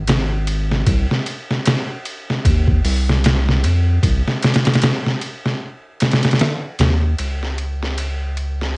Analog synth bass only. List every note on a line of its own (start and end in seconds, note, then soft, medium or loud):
0.08 0.84 G#1 loud
0.87 1.07 C2 medium
2.45 2.80 D#2 medium
2.85 3.65 C2 medium
3.64 3.99 F2 medium
4.03 4.23 C2 medium
6.79 7.15 D#2 medium
7.19 8.77 C#2 medium